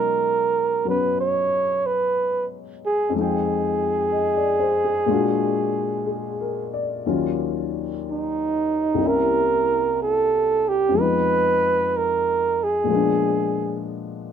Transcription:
Already playing: upright piano B2 F#3 G#3 C#4 D#4, flugelhorn A#4
0.85 upright piano F#3 B3 C#4
0.89 flugelhorn B4
1.20 flugelhorn C#5
1.86 flugelhorn B4
2.86 flugelhorn G#4
3.09 upright piano F2 F3
3.15 upright piano G#3 D#4
3.20 flugelhorn G#4, upright piano G5
4.12 upright piano D#5
4.37 upright piano D5
4.59 upright piano C5
4.84 upright piano G#4
5.06 upright piano A#2 G#3 F4
5.10 upright piano D4 F#4
6.06 upright piano G#4
6.41 upright piano A#4
6.74 upright piano D5
7.06 upright piano D#2 D#3 F#3 C#4 F4
8.11 flugelhorn D#4
8.94 upright piano C2 C3
9.00 upright piano A#3 C#4
9.05 upright piano E4, flugelhorn A#4
10.03 flugelhorn A4
10.68 flugelhorn G4
10.88 upright piano F2 F3
10.94 upright piano G#3 B3
11.00 upright piano D#4, flugelhorn B4
11.97 flugelhorn A#4
12.63 flugelhorn G#4
12.84 upright piano A#2 F3
12.89 upright piano G#3 B3
12.94 upright piano D4

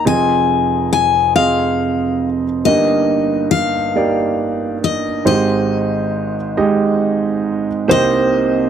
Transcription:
0.05 upright piano F1 F2 C4 F4 G#4 D#5, steel-string acoustic guitar G#5
0.93 steel-string acoustic guitar G#5
1.35 upright piano C4 F4 G#4 D#5, steel-string acoustic guitar F5
2.65 upright piano G1 G2 A#3 D#4 G4 D#5, steel-string acoustic guitar D#5
3.51 steel-string acoustic guitar F5
3.96 upright piano A#3 D#4 G4 D5
4.84 steel-string acoustic guitar D#5
5.25 upright piano G#1 G#2 G#3 D#4 G4 C5, steel-string acoustic guitar D#5
6.57 upright piano G#3 D#4 G4 D#5
7.88 upright piano C2 C3 A#3 D#4 G4 C5, clean electric guitar C5, steel-string acoustic guitar D#5

